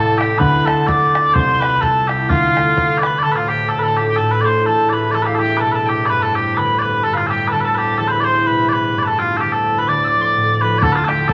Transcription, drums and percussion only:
0.21 bodhran medium
0.41 bodhran medium
0.67 bodhran medium
0.88 bodhran medium
1.15 bodhran medium
1.35 bodhran loud
1.62 bodhran medium
1.83 bodhran medium
2.09 bodhran medium
2.30 bodhran medium
2.57 bodhran medium
2.77 bodhran medium
3.03 bodhran medium
10.82 bodhran medium
11.09 bodhran medium
11.29 bodhran medium

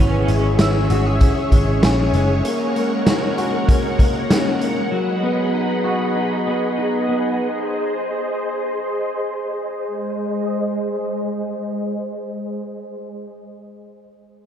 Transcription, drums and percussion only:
0.28 closed hi-hat soft
0.59 snare loud
0.59 closed hi-hat medium
0.90 closed hi-hat medium
1.21 kick medium
1.21 closed hi-hat medium
1.52 kick medium
1.52 closed hi-hat medium
1.83 snare loud
1.83 closed hi-hat medium
2.14 closed hi-hat soft
2.45 closed hi-hat medium
2.76 closed hi-hat soft
3.06 snare loud
3.06 closed hi-hat medium
3.38 closed hi-hat soft
3.69 kick medium
3.69 closed hi-hat medium
3.99 kick medium
3.99 closed hi-hat medium
4.31 snare loud
4.31 closed hi-hat medium
4.61 closed hi-hat soft

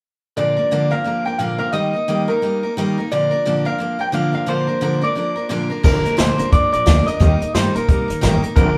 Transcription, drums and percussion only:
5.84 kick loud
5.84 crash loud
6.05 closed hi-hat medium
6.18 snare loud
6.18 closed hi-hat medium
6.39 closed hi-hat medium
6.52 kick loud
6.52 closed hi-hat medium
6.73 closed hi-hat medium
6.87 snare loud
6.87 closed hi-hat medium
7.07 closed hi-hat medium
7.21 kick loud
7.21 closed hi-hat medium
7.41 closed hi-hat medium
7.55 snare loud
7.55 closed hi-hat medium
7.75 closed hi-hat medium
7.89 kick loud
7.89 closed hi-hat medium
8.10 closed hi-hat medium
8.23 snare loud
8.23 closed hi-hat medium
8.43 closed hi-hat medium
8.56 kick loud
8.56 closed hi-hat medium

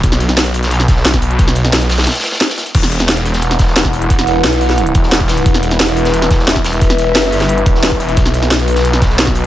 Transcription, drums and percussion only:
0.04 kick loud
0.04 closed hi-hat medium
0.12 snare soft
0.20 closed hi-hat medium
0.29 snare soft
0.29 closed hi-hat soft
0.37 snare loud
0.37 closed hi-hat medium
0.46 closed hi-hat soft
0.54 closed hi-hat medium
0.54 open hi-hat medium
0.63 snare soft
0.63 closed hi-hat soft
0.71 closed hi-hat medium
0.71 closed hi-hat loud
0.80 snare soft
0.80 closed hi-hat soft
0.88 kick loud
0.88 snare medium
0.88 closed hi-hat medium
0.97 snare soft
1.05 snare loud
1.05 closed hi-hat loud
1.05 closed hi-hat medium
1.14 kick medium
1.14 snare soft
1.22 closed hi-hat medium
1.22 open hi-hat medium
1.31 closed hi-hat soft
1.39 kick loud
1.39 closed hi-hat loud
1.48 snare soft
1.55 closed hi-hat medium
1.65 snare soft
1.73 snare loud
1.73 closed hi-hat loud
1.73 closed hi-hat medium
1.81 closed hi-hat soft
1.89 snare loud
1.89 closed hi-hat medium
1.89 open hi-hat medium
1.98 snare loud
1.98 snare soft
1.98 closed hi-hat soft
1.98 closed hi-hat medium
2.02 snare loud
2.02 closed hi-hat medium
2.07 snare medium
2.07 snare soft
2.07 closed hi-hat loud
2.07 closed hi-hat medium
2.11 snare loud
2.11 closed hi-hat medium
2.15 snare medium
2.15 closed hi-hat medium
2.15 closed hi-hat soft
2.20 snare medium
2.20 closed hi-hat medium
2.24 snare loud
2.24 closed hi-hat medium
2.32 snare loud
2.32 closed hi-hat medium
2.40 snare loud
2.40 closed hi-hat medium
2.40 closed hi-hat loud
2.49 snare loud
2.49 closed hi-hat medium
2.58 snare loud
2.58 closed hi-hat medium
2.58 open hi-hat medium
2.66 closed hi-hat soft
2.66 closed hi-hat medium
2.75 kick loud
2.75 closed hi-hat loud
2.75 closed hi-hat medium
2.75 crash medium
2.83 snare soft
2.92 closed hi-hat medium
3.00 snare soft
3.09 snare loud
3.09 closed hi-hat medium
3.17 closed hi-hat soft
3.26 closed hi-hat medium
3.26 open hi-hat medium
3.33 snare medium
3.33 closed hi-hat soft
3.42 closed hi-hat medium
3.42 closed hi-hat loud
3.51 snare soft
3.51 closed hi-hat soft
3.59 kick loud
3.59 snare medium
3.59 closed hi-hat medium
3.68 snare soft
3.76 snare loud
3.76 closed hi-hat loud
3.76 closed hi-hat medium
3.85 kick medium
3.85 snare soft
3.93 closed hi-hat medium
3.93 open hi-hat medium
4.02 closed hi-hat soft
4.10 kick loud
4.10 closed hi-hat loud
4.10 closed hi-hat medium
4.19 snare medium
4.27 closed hi-hat medium
4.44 snare loud
4.44 closed hi-hat medium
4.53 closed hi-hat soft
4.61 open hi-hat medium
4.70 snare soft
4.70 closed hi-hat soft
4.78 closed hi-hat medium
4.87 closed hi-hat soft
4.94 kick loud
4.94 closed hi-hat medium
5.03 snare soft
5.12 snare loud
5.12 closed hi-hat medium
5.20 kick medium
5.20 closed hi-hat soft
5.28 snare loud
5.28 closed hi-hat medium
5.28 open hi-hat medium
5.37 closed hi-hat soft
5.46 kick loud
5.46 closed hi-hat medium
5.54 snare medium
5.63 closed hi-hat medium
5.70 snare soft
5.70 closed hi-hat soft
5.80 snare loud
5.80 closed hi-hat medium
5.88 closed hi-hat soft
5.97 closed hi-hat medium
5.97 open hi-hat medium
6.05 snare soft
6.05 closed hi-hat soft
6.14 closed hi-hat medium
6.22 snare soft
6.31 kick loud
6.31 snare medium
6.31 closed hi-hat medium
6.40 snare soft
6.47 snare loud
6.47 closed hi-hat medium
6.56 kick medium
6.56 snare soft
6.64 snare loud
6.64 closed hi-hat medium
6.64 open hi-hat medium
6.73 closed hi-hat soft
6.81 kick loud
6.81 closed hi-hat medium
6.90 snare soft
6.98 closed hi-hat medium
7.15 snare loud
7.15 closed hi-hat medium
7.24 closed hi-hat soft
7.32 open hi-hat medium
7.41 snare soft
7.41 closed hi-hat soft
7.49 closed hi-hat medium
7.58 closed hi-hat soft
7.66 kick loud
7.66 closed hi-hat medium
7.75 snare soft
7.82 snare loud
7.82 closed hi-hat medium
7.91 kick medium
7.91 closed hi-hat soft
8.00 closed hi-hat medium
8.00 open hi-hat medium
8.08 closed hi-hat soft
8.17 kick loud
8.17 closed hi-hat medium
8.17 closed hi-hat loud
8.26 snare soft
8.34 closed hi-hat medium
8.42 snare soft
8.42 closed hi-hat soft
8.50 snare loud
8.50 closed hi-hat medium
8.59 closed hi-hat soft
8.68 closed hi-hat medium
8.68 open hi-hat medium
8.76 snare soft
8.76 closed hi-hat soft
8.85 closed hi-hat medium
8.93 snare soft
8.93 closed hi-hat soft
9.01 kick loud
9.01 snare soft
9.01 closed hi-hat medium
9.10 snare soft
9.18 snare loud
9.18 closed hi-hat medium
9.27 kick medium
9.27 snare soft
9.35 closed hi-hat medium
9.35 open hi-hat medium

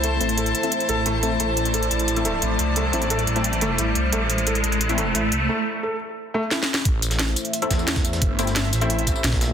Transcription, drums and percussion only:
0.04 closed hi-hat medium
0.21 closed hi-hat medium
0.29 closed hi-hat soft
0.38 closed hi-hat medium
0.46 closed hi-hat soft
0.55 closed hi-hat medium
0.63 closed hi-hat soft
0.72 closed hi-hat medium
0.80 closed hi-hat soft
0.89 closed hi-hat medium
1.06 closed hi-hat medium
1.23 closed hi-hat medium
1.40 closed hi-hat medium
1.57 closed hi-hat medium
1.65 closed hi-hat soft
1.74 closed hi-hat medium
1.83 closed hi-hat soft
1.91 closed hi-hat medium
1.99 closed hi-hat soft
2.08 closed hi-hat medium
2.16 closed hi-hat soft
2.25 closed hi-hat medium
2.42 closed hi-hat medium
2.59 closed hi-hat medium
2.76 closed hi-hat medium
2.93 closed hi-hat medium
3.02 closed hi-hat soft
3.10 closed hi-hat medium
3.19 closed hi-hat soft
3.27 closed hi-hat medium
3.36 closed hi-hat soft
3.44 closed hi-hat medium
3.53 closed hi-hat soft
3.61 closed hi-hat medium
3.78 closed hi-hat medium
3.95 closed hi-hat medium
4.13 closed hi-hat medium
4.30 closed hi-hat medium
4.38 closed hi-hat soft
4.47 closed hi-hat medium
4.55 closed hi-hat soft
4.64 closed hi-hat medium
4.72 closed hi-hat soft
4.81 closed hi-hat medium
4.89 closed hi-hat soft
4.98 closed hi-hat medium
5.15 closed hi-hat medium
5.32 closed hi-hat medium
6.51 snare medium
6.63 snare medium
6.74 snare loud
6.85 kick loud
6.85 closed hi-hat loud
6.85 closed hi-hat medium
7.02 closed hi-hat medium
7.02 tambourine medium
7.11 snare medium
7.11 closed hi-hat soft
7.11 tambourine soft
7.19 snare loud
7.19 closed hi-hat loud
7.19 open hi-hat medium
7.36 closed hi-hat medium
7.36 tambourine medium
7.45 closed hi-hat soft
7.53 closed hi-hat loud
7.53 closed hi-hat medium
7.62 closed hi-hat soft
7.71 kick medium
7.71 snare loud
7.71 closed hi-hat medium
7.71 tambourine medium
7.79 tambourine soft
7.88 snare loud
7.88 snare soft
7.88 closed hi-hat medium
7.96 kick loud
7.96 snare loud
7.96 closed hi-hat medium
8.05 closed hi-hat medium
8.05 tambourine medium
8.13 snare soft
8.13 closed hi-hat medium
8.22 kick loud
8.22 closed hi-hat medium
8.22 closed hi-hat loud
8.39 closed hi-hat medium
8.39 tambourine medium
8.47 snare soft
8.47 closed hi-hat soft
8.47 tambourine soft
8.56 snare loud
8.56 closed hi-hat loud
8.56 closed hi-hat medium
8.73 snare soft
8.73 closed hi-hat medium
8.73 tambourine medium
8.81 closed hi-hat soft
8.90 closed hi-hat loud
8.90 closed hi-hat medium
8.99 closed hi-hat soft
9.07 kick medium
9.07 closed hi-hat medium
9.07 tambourine medium
9.16 tambourine soft
9.24 snare loud
9.24 closed hi-hat loud
9.24 open hi-hat medium
9.33 kick loud
9.33 snare loud
9.33 open hi-hat medium
9.41 snare loud
9.41 closed hi-hat medium
9.41 open hi-hat medium
9.41 tambourine medium

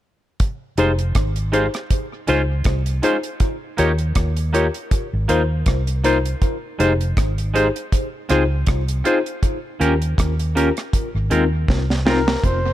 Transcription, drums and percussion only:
0.40 kick loud
0.40 closed hi-hat medium
0.78 closed hi-hat medium
0.99 closed hi-hat soft
1.15 kick loud
1.15 cross-stick loud
1.15 closed hi-hat medium
1.36 closed hi-hat medium
1.53 closed hi-hat medium
1.74 cross-stick medium
1.74 closed hi-hat soft
1.91 kick loud
1.91 closed hi-hat medium
2.28 closed hi-hat medium
2.64 kick loud
2.64 cross-stick loud
2.64 closed hi-hat medium
2.86 closed hi-hat medium
3.03 closed hi-hat medium
3.23 closed hi-hat soft
3.40 kick loud
3.40 closed hi-hat medium
3.78 closed hi-hat medium
3.99 closed hi-hat soft
4.15 kick loud
4.15 cross-stick loud
4.15 closed hi-hat medium
4.37 closed hi-hat medium
4.54 closed hi-hat medium
4.74 closed hi-hat medium
4.91 kick loud
4.91 closed hi-hat medium
5.29 closed hi-hat medium
5.66 kick loud
5.66 cross-stick loud
5.66 closed hi-hat medium
5.87 closed hi-hat medium
6.04 closed hi-hat medium
6.25 closed hi-hat soft
6.42 kick loud
6.42 closed hi-hat medium
6.80 closed hi-hat medium
7.01 closed hi-hat soft
7.17 kick loud
7.17 cross-stick loud
7.17 closed hi-hat medium
7.38 closed hi-hat soft
7.56 closed hi-hat medium
7.76 closed hi-hat soft
7.92 kick loud
7.92 closed hi-hat loud
8.29 cross-stick medium
8.29 closed hi-hat medium
8.67 kick loud
8.67 cross-stick loud
8.67 closed hi-hat medium
8.88 closed hi-hat medium
9.05 closed hi-hat medium
9.26 closed hi-hat soft
9.43 kick loud
9.43 closed hi-hat medium
9.81 closed hi-hat medium
10.02 closed hi-hat soft
10.18 kick loud
10.18 cross-stick loud
10.18 closed hi-hat medium
10.39 closed hi-hat soft
10.57 closed hi-hat medium
10.77 cross-stick medium
10.77 closed hi-hat soft
10.93 kick loud
10.93 closed hi-hat loud
11.31 closed hi-hat medium
11.68 kick loud
11.68 snare medium
11.90 snare medium
12.07 snare medium
12.28 snare medium
12.44 kick loud
12.44 closed hi-hat medium

